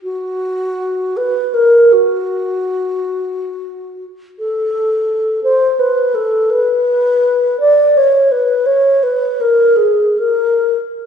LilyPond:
\new Staff \with { instrumentName = "Alto flute" } { \time 3/4 \key b \minor \tempo 4 = 83 fis'4. b'8 ais'8 fis'8~ | fis'2~ fis'8 r8 | a'4. c''8 b'8 a'8 | b'4. d''8 cis''8 b'8 |
cis''8 b'8 ais'8 gis'8 ais'8 r8 | }